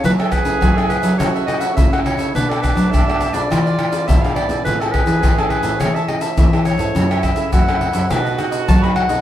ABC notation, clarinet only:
X:1
M:4/4
L:1/16
Q:1/4=104
K:F#dor
V:1 name="Clarinet"
B A B3 A B2 c z d f e f c2 | B A B2 e3 =d4- d e =f d2 | B A B3 A B2 c e d e3 c2- | c2 e2 f4 B2 z2 a b f2 |]